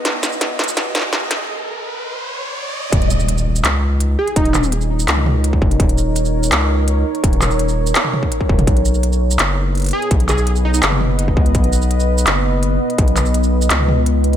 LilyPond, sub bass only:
\new Staff \with { instrumentName = "Sub bass" } { \clef bass \time 4/4 \key ees \minor \tempo 4 = 167 r1 | r1 | ees,,2 des,4. r8 | ees,,2 des,4. f,,8 |
ees,,2 des,4. r8 | ees,,2 r4. ees,,8 | b,,2 fis,,4. r8 | b,,2 fis,,4. des,8 |
b,,2 fis,,4. r8 | b,,2 des,2 | }